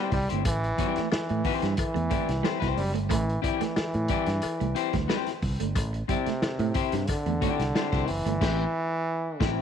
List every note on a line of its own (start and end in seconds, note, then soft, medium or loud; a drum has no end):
0.00 0.11 G3 loud
0.00 0.16 C4 medium
0.00 0.16 E4 medium
0.00 0.16 G4 medium
0.00 0.15 C5 medium
0.12 0.26 C2 loud
0.12 0.28 G3 loud
0.12 kick medium
0.12 open hi-hat medium
0.29 0.46 G1 medium
0.29 0.40 A3 medium
0.29 0.43 C4 medium
0.29 0.43 E4 medium
0.29 0.43 G4 medium
0.29 0.42 C5 medium
0.29 closed hi-hat medium
0.45 0.71 A1 loud
0.45 1.08 E3 loud
0.45 kick loud
0.45 closed hi-hat loud
0.45 cowbell medium
0.64 muted clean electric guitar stroke soft
0.64 closed hi-hat soft
0.78 0.91 G3 medium
0.78 0.99 C4 medium
0.78 1.00 E4 medium
0.78 1.00 G4 medium
0.78 1.00 D5 medium
0.78 kick medium
0.78 closed hi-hat medium
0.96 1.07 A3 medium
0.96 muted fingered electric bass stroke medium
0.96 snare soft
0.96 closed hi-hat soft
1.12 1.74 E3 loud
1.12 muted fingered electric bass stroke soft
1.12 snare loud
1.12 cowbell medium
1.29 1.42 A2 medium
1.29 1.40 A3 medium
1.29 closed hi-hat soft
1.44 1.66 C4 loud
1.44 1.66 E4 medium
1.44 1.66 G4 medium
1.44 1.66 C5 loud
1.44 muted clean electric guitar stroke soft
1.44 kick loud
1.44 open hi-hat medium
1.62 1.75 G2 medium
1.62 1.73 G3 medium
1.62 snare soft
1.62 closed hi-hat soft
1.77 2.73 E3 loud
1.77 muted clean electric guitar stroke soft
1.77 muted fingered electric bass stroke medium
1.77 kick loud
1.77 closed hi-hat medium
1.77 cowbell medium
1.94 2.08 E2 medium
1.94 2.05 A3 medium
1.94 closed hi-hat soft
2.10 2.22 A3 medium
2.10 2.29 C4 medium
2.10 2.29 E4 medium
2.10 2.30 G4 medium
2.10 2.30 D5 medium
2.10 kick loud
2.10 closed hi-hat medium
2.29 2.41 C2 medium
2.29 snare soft
2.29 closed hi-hat soft
2.43 2.55 G3 medium
2.43 2.58 C4 medium
2.43 2.59 E4 medium
2.43 2.59 G4 medium
2.43 2.59 C5 medium
2.43 snare loud
2.43 cowbell medium
2.60 2.74 C2 medium
2.60 2.81 C4 medium
2.60 2.81 E4 medium
2.60 2.81 G4 medium
2.60 2.80 C5 medium
2.60 muted clean electric guitar stroke soft
2.60 kick medium
2.60 snare soft
2.60 closed hi-hat soft
2.77 2.94 F#1 medium
2.77 2.92 G3 loud
2.77 open hi-hat medium
2.94 3.11 G1 medium
2.94 3.05 A3 medium
2.94 closed hi-hat medium
3.09 3.36 A1 loud
3.09 3.42 E3 loud
3.09 3.21 A3 loud
3.09 kick loud
3.09 closed hi-hat loud
3.09 cowbell medium
3.29 closed hi-hat soft
3.42 5.39 E3 loud
3.42 3.61 C4 medium
3.42 3.61 E4 loud
3.42 3.62 G4 loud
3.42 3.62 D5 loud
3.42 muted clean electric guitar stroke soft
3.42 kick medium
3.42 closed hi-hat medium
3.61 3.71 A3 medium
3.61 muted fingered electric bass stroke soft
3.61 snare soft
3.61 closed hi-hat medium
3.76 muted fingered electric bass stroke soft
3.76 snare loud
3.76 cowbell medium
3.94 4.07 A2 medium
3.94 closed hi-hat soft
4.08 4.21 G3 medium
4.08 4.28 C4 medium
4.08 4.28 E4 loud
4.08 4.28 G4 loud
4.08 4.29 D5 loud
4.08 kick loud
4.08 closed hi-hat medium
4.26 4.40 G2 medium
4.26 snare soft
4.26 closed hi-hat medium
4.42 muted fingered electric bass stroke medium
4.42 closed hi-hat medium
4.42 cowbell medium
4.60 4.73 C2 medium
4.60 4.71 A3 medium
4.60 closed hi-hat soft
4.75 4.94 C4 medium
4.75 4.94 E4 medium
4.75 4.95 G4 medium
4.75 4.95 C5 loud
4.75 muted clean electric guitar stroke soft
4.75 closed hi-hat medium
4.93 5.06 D2 loud
4.93 5.04 G3 medium
4.93 kick medium
4.93 snare soft
4.93 closed hi-hat soft
5.08 5.21 G3 medium
5.08 5.30 C4 medium
5.08 5.30 E4 medium
5.08 5.30 G4 loud
5.08 5.30 C5 loud
5.08 snare loud
5.08 cowbell medium
5.27 snare soft
5.27 closed hi-hat soft
5.42 5.56 C2 medium
5.42 muted clean electric guitar stroke medium
5.42 kick loud
5.42 open hi-hat medium
5.60 5.76 G1 loud
5.60 5.70 A3 medium
5.60 closed hi-hat medium
5.75 6.02 A1 loud
5.75 kick loud
5.75 closed hi-hat loud
5.75 cowbell medium
5.93 muted clean electric guitar stroke medium
5.93 closed hi-hat soft
6.08 7.10 C3 loud
6.08 6.21 G3 medium
6.08 6.27 C4 medium
6.08 6.27 E4 medium
6.08 6.27 G4 medium
6.08 6.28 D5 loud
6.08 kick loud
6.08 closed hi-hat medium
6.26 6.37 A3 medium
6.26 muted fingered electric bass stroke soft
6.26 snare soft
6.26 closed hi-hat soft
6.42 muted fingered electric bass stroke medium
6.42 snare loud
6.42 cowbell medium
6.59 6.72 A2 loud
6.59 6.70 A3 medium
6.59 closed hi-hat soft
6.74 6.93 C4 medium
6.74 6.93 E4 loud
6.74 6.94 G4 loud
6.74 6.94 C5 loud
6.74 kick loud
6.74 closed hi-hat medium
6.92 7.05 G2 loud
6.92 7.03 G3 loud
6.92 snare soft
6.92 closed hi-hat medium
7.07 8.10 D3 loud
7.07 muted clean electric guitar stroke soft
7.07 muted fingered electric bass stroke soft
7.07 kick loud
7.07 closed hi-hat medium
7.07 cowbell medium
7.26 7.38 E2 medium
7.26 7.36 A3 medium
7.26 closed hi-hat soft
7.41 7.53 A3 medium
7.41 7.62 C4 medium
7.41 7.62 E4 medium
7.41 7.63 G4 loud
7.41 7.63 D5 loud
7.41 kick loud
7.41 closed hi-hat medium
7.60 7.71 C2 medium
7.60 snare soft
7.60 closed hi-hat soft
7.75 7.86 G3 medium
7.75 7.89 C4 medium
7.75 7.89 E4 medium
7.75 7.90 G4 medium
7.75 7.90 C5 medium
7.75 snare loud
7.75 cowbell medium
7.92 8.04 C2 loud
7.92 8.09 C4 medium
7.92 8.09 E4 medium
7.92 8.09 G4 medium
7.92 8.09 C5 medium
7.92 muted clean electric guitar stroke soft
7.92 kick loud
7.92 snare soft
7.92 closed hi-hat soft
8.08 8.22 F#1 medium
8.08 9.42 E3 loud
8.08 open hi-hat medium
8.26 8.38 G1 medium
8.26 8.36 A3 medium
8.26 closed hi-hat medium
8.41 8.64 A1 loud
8.41 8.64 C4 loud
8.41 8.64 E4 loud
8.41 8.64 G4 loud
8.41 kick loud
8.41 snare loud
8.41 crash medium
9.40 9.62 A1 loud
9.40 9.62 C3 medium
9.40 9.62 C4 loud
9.40 9.62 E4 loud
9.40 9.62 G4 loud
9.40 kick loud
9.40 snare loud